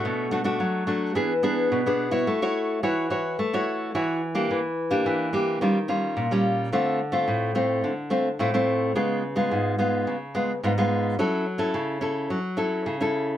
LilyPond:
\new Staff \with { instrumentName = "Nylon-string guitar" } { \time 4/4 \key a \major \tempo 4 = 108 << { <a d' fis'>8 <a d' fis'>16 <a d' fis'>8. <a d' fis'>8 <b d' gis'>16 r16 <b d' gis'>8. <b d' gis'>8 <e' fis' cis''>16~ | <e' fis' cis''>16 <e' fis' cis''>8. <e' fis' cis''>8 <e' fis' cis''>8 r16 <e' fis' cis''>8. <e' fis' cis''>8 r16 <bes d' g'>16~ | <bes d' g'>16 r8 <bes d' g'>8. <bes d' g'>8 <g cis' eis'>16 r16 <g cis' eis'>8. <g cis' eis'>8. | <a c' f'>8 r16 <a c' f'>8. <a c' f'>8. r16 <a c' f'>16 r16 <a c' f'>16 <a c' f'>8. |
<gis b eis'>8 r16 <gis b eis'>8. <gis b eis'>8. r16 <gis b eis'>16 r16 <gis b eis'>16 <gis b eis'>8. | <cis' e' a'>8 r16 <cis' e' a'>8. <cis' e' a'>8. r16 <cis' e' a'>8. <cis' e' a'>8. | } \\ { b,4 fis4 e4 b,4 | a4 e4 a4 e4 | e4 e4 dis4 ais,4 | d4 a,4 d4 a,4 |
cis4 gis,4 cis4 gis,4 | fis4 cis4 fis4 cis4 | } >> }